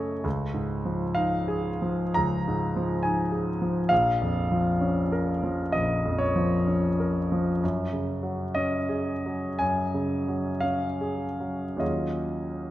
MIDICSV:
0, 0, Header, 1, 2, 480
1, 0, Start_track
1, 0, Key_signature, -5, "major"
1, 0, Tempo, 900901
1, 133, Time_signature, 4, 2, 24, 8
1, 618, Tempo, 993377
1, 1098, Tempo, 888889
1, 2538, Tempo, 937500
1, 4458, Tempo, 1036269
1, 5418, Tempo, 1178782
1, 6259, End_track
2, 0, Start_track
2, 0, Title_t, "Grand piano"
2, 0, Program_c, 0, 0
2, 0, Control_c, 0, 64, 127
2, 0, Note_on_c, 0, 42, 32
2, 0, Note_on_c, 0, 49, 34
2, 0, Note_on_c, 0, 57, 36
2, 0, Note_on_c, 0, 61, 34
2, 0, Note_on_c, 0, 68, 33
2, 0, Note_on_c, 0, 73, 61
2, 0, Note_on_c, 0, 75, 56
2, 68, Note_off_c, 0, 68, 0
2, 108, Note_off_c, 0, 42, 0
2, 128, Note_off_c, 0, 73, 0
2, 128, Note_on_c, 0, 37, 43
2, 132, Note_off_c, 0, 57, 0
2, 143, Note_off_c, 0, 75, 0
2, 143, Control_c, 0, 64, 0
2, 145, Note_off_c, 0, 61, 0
2, 146, Note_off_c, 0, 49, 0
2, 234, Control_c, 0, 64, 127
2, 288, Note_on_c, 0, 44, 31
2, 455, Note_on_c, 0, 53, 30
2, 551, Note_off_c, 0, 44, 0
2, 610, Note_on_c, 0, 77, 68
2, 616, Note_on_c, 0, 63, 37
2, 708, Note_off_c, 0, 53, 0
2, 772, Note_on_c, 0, 68, 40
2, 870, Note_off_c, 0, 63, 0
2, 937, Note_on_c, 0, 53, 37
2, 1035, Note_off_c, 0, 68, 0
2, 1077, Note_off_c, 0, 37, 0
2, 1094, Note_on_c, 0, 82, 70
2, 1095, Note_off_c, 0, 77, 0
2, 1106, Note_on_c, 0, 37, 38
2, 1202, Note_off_c, 0, 53, 0
2, 1272, Note_on_c, 0, 44, 35
2, 1429, Note_on_c, 0, 53, 41
2, 1518, Note_off_c, 0, 44, 0
2, 1569, Note_on_c, 0, 80, 54
2, 1574, Note_off_c, 0, 82, 0
2, 1578, Note_on_c, 0, 63, 38
2, 1669, Note_off_c, 0, 53, 0
2, 1725, Note_on_c, 0, 68, 35
2, 1823, Note_off_c, 0, 63, 0
2, 1888, Note_on_c, 0, 53, 37
2, 1980, Note_off_c, 0, 68, 0
2, 2028, Note_off_c, 0, 37, 0
2, 2036, Note_on_c, 0, 77, 77
2, 2043, Note_off_c, 0, 80, 0
2, 2043, Note_on_c, 0, 34, 45
2, 2048, Note_off_c, 0, 53, 0
2, 2056, Control_c, 0, 64, 0
2, 2140, Control_c, 0, 64, 127
2, 2211, Note_on_c, 0, 41, 31
2, 2375, Note_on_c, 0, 53, 35
2, 2473, Note_off_c, 0, 41, 0
2, 2531, Note_on_c, 0, 61, 38
2, 2634, Note_off_c, 0, 53, 0
2, 2693, Note_on_c, 0, 70, 40
2, 2787, Note_off_c, 0, 61, 0
2, 2853, Note_on_c, 0, 53, 38
2, 2947, Note_off_c, 0, 70, 0
2, 2990, Note_off_c, 0, 34, 0
2, 3001, Note_on_c, 0, 75, 64
2, 3007, Note_off_c, 0, 77, 0
2, 3009, Note_on_c, 0, 34, 40
2, 3106, Note_off_c, 0, 53, 0
2, 3170, Note_on_c, 0, 41, 33
2, 3237, Note_on_c, 0, 73, 60
2, 3244, Note_off_c, 0, 75, 0
2, 3326, Note_on_c, 0, 53, 38
2, 3426, Note_off_c, 0, 41, 0
2, 3487, Note_on_c, 0, 61, 34
2, 3588, Note_off_c, 0, 53, 0
2, 3653, Note_on_c, 0, 70, 34
2, 3750, Note_off_c, 0, 61, 0
2, 3818, Note_on_c, 0, 53, 35
2, 3912, Note_off_c, 0, 70, 0
2, 3954, Note_off_c, 0, 34, 0
2, 3970, Note_off_c, 0, 73, 0
2, 3976, Note_off_c, 0, 53, 0
2, 3978, Note_on_c, 0, 42, 41
2, 3984, Control_c, 0, 64, 0
2, 4080, Control_c, 0, 64, 127
2, 4129, Note_on_c, 0, 49, 30
2, 4283, Note_on_c, 0, 54, 31
2, 4388, Note_off_c, 0, 49, 0
2, 4445, Note_on_c, 0, 75, 62
2, 4450, Note_on_c, 0, 61, 36
2, 4545, Note_off_c, 0, 54, 0
2, 4606, Note_on_c, 0, 68, 34
2, 4712, Note_off_c, 0, 61, 0
2, 4778, Note_on_c, 0, 54, 31
2, 4876, Note_off_c, 0, 68, 0
2, 4926, Note_off_c, 0, 42, 0
2, 4929, Note_on_c, 0, 80, 62
2, 4937, Note_on_c, 0, 42, 33
2, 4939, Note_off_c, 0, 75, 0
2, 5036, Note_off_c, 0, 54, 0
2, 5093, Note_on_c, 0, 49, 30
2, 5252, Note_on_c, 0, 54, 32
2, 5347, Note_off_c, 0, 49, 0
2, 5401, Note_on_c, 0, 77, 64
2, 5409, Note_off_c, 0, 80, 0
2, 5411, Note_on_c, 0, 61, 33
2, 5506, Note_off_c, 0, 54, 0
2, 5568, Note_on_c, 0, 68, 28
2, 5660, Note_off_c, 0, 61, 0
2, 5728, Note_on_c, 0, 54, 27
2, 5824, Note_off_c, 0, 68, 0
2, 5871, Note_off_c, 0, 42, 0
2, 5875, Note_off_c, 0, 54, 0
2, 5875, Note_on_c, 0, 39, 34
2, 5881, Note_on_c, 0, 54, 26
2, 5883, Note_off_c, 0, 77, 0
2, 5883, Note_on_c, 0, 61, 27
2, 5887, Note_on_c, 0, 65, 29
2, 5888, Note_on_c, 0, 75, 41
2, 5891, Note_on_c, 0, 68, 25
2, 5899, Control_c, 0, 64, 0
2, 5990, Control_c, 0, 64, 127
2, 6259, Note_off_c, 0, 39, 0
2, 6259, Note_off_c, 0, 54, 0
2, 6259, Note_off_c, 0, 61, 0
2, 6259, Note_off_c, 0, 65, 0
2, 6259, Note_off_c, 0, 68, 0
2, 6259, Note_off_c, 0, 75, 0
2, 6259, End_track
0, 0, End_of_file